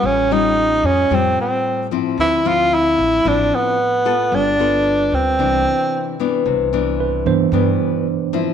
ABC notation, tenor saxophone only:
X:1
M:4/4
L:1/8
Q:1/4=112
K:C
V:1 name="Tenor saxophone"
^C _E2 C ^B, B,2 z | E F E2 D B,3 | D3 C4 z | z8 |]